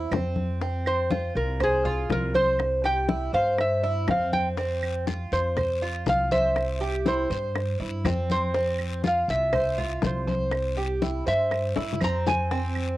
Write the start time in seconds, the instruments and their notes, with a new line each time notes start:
Already playing: cuban tres E4
0.11 upright bass F2, cuban tres C4, high bongo, low bongo, high conga, claves
0.36 high conga
0.61 cuban tres C4, high bongo, high conga
0.85 resonator guitar played with a steel bar C5, high conga, claves
1.10 cuban tres F4, high bongo, high conga
1.35 upright bass C2, resonator guitar played with a steel bar A#4, high conga
1.60 resonator guitar played with a steel bar G#4, cuban tres C5, high bongo, high conga, low conga, claves
1.85 cuban tres F4, high conga, low conga
2.09 upright bass C2, resonator guitar played with a steel bar A#4, high bongo, low bongo, high conga
2.34 cuban tres C5, resonator guitar played with a steel bar C5, high conga
2.59 high bongo, high conga, claves
2.84 cuban tres G4, resonator guitar played with a steel bar G5, high bongo, high conga
3.09 cuban tres E4, high bongo, high conga
3.33 upright bass G2, cuban tres C5, resonator guitar played with a steel bar F5, high bongo, high conga
3.58 resonator guitar played with a steel bar E5, high bongo, high conga, claves
3.83 cuban tres E4, high bongo, high conga
4.08 upright bass F2, cuban tres C4, resonator guitar played with a steel bar F5, high bongo, low bongo, high conga, claves
4.33 resonator guitar played with a steel bar G5, high conga
4.57 cuban tres C4, high bongo, high conga, long guiro
4.83 high conga, claves
5.07 cuban tres F4, high bongo, high conga, short guiro
5.32 upright bass F2, resonator guitar played with a steel bar C5, high conga, short guiro
5.57 cuban tres C5, high bongo, high conga, low conga, long guiro, claves
5.82 cuban tres F4, high conga
6.06 upright bass C2, resonator guitar played with a steel bar F5, high bongo, low bongo, high conga, short guiro
6.31 cuban tres C5, resonator guitar played with a steel bar E5, high conga, short guiro
6.56 high bongo, high conga, long guiro, claves
6.81 cuban tres G4, high bongo, high conga
7.06 cuban tres E4, resonator guitar played with a steel bar C5, high bongo, high conga, short guiro
7.30 upright bass G2, cuban tres C5, high bongo, high conga, short guiro
7.55 high bongo, high conga, long guiro, claves
7.80 upright bass G2, cuban tres E4, high bongo, high conga
8.04 upright bass F2, cuban tres C4, high bongo, low bongo, high conga, short guiro, claves
8.30 resonator guitar played with a steel bar C5, high conga, short guiro
8.54 cuban tres C4, high bongo, high conga, long guiro
8.79 high conga, claves
9.04 cuban tres F4, resonator guitar played with a steel bar F5, high bongo, high conga, short guiro
9.28 upright bass C2, resonator guitar played with a steel bar E5, high conga, short guiro
9.53 cuban tres C5, high bongo, high conga, low conga, long guiro, claves
9.78 cuban tres F4, high conga, low conga
10.02 upright bass C2, high bongo, low bongo, high conga, short guiro
10.06 resonator guitar played with a steel bar C5
10.27 cuban tres C5, high conga, short guiro
10.51 high bongo, high conga, long guiro, claves
10.77 cuban tres G4, high bongo, high conga
11.02 cuban tres E4, high bongo, high conga, short guiro
11.27 upright bass G2, cuban tres C5, resonator guitar played with a steel bar E5, high bongo, high conga, short guiro
11.51 high bongo, high conga, long guiro, claves
11.76 upright bass G2, cuban tres E4, high bongo, high conga
11.93 low bongo
12.01 upright bass F2, cuban tres C4, resonator guitar played with a steel bar A#5, high conga, short guiro, claves
12.26 resonator guitar played with a steel bar G#5, low bongo, high conga, short guiro
12.51 cuban tres C4, high bongo, high conga, long guiro
12.76 high conga, claves